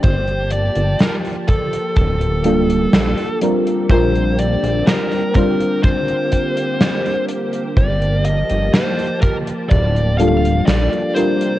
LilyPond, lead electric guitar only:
\new Staff \with { instrumentName = "Lead electric guitar" } { \time 4/4 \key g \minor \tempo 4 = 62 c''8 d''8 bes'8 a'8 a'4. r8 | c''8 d''8 bes'8 bes'8 c''4. r8 | d''8 ees''8 c''8 bes'8 d''8 f''8 d''8 c''8 | }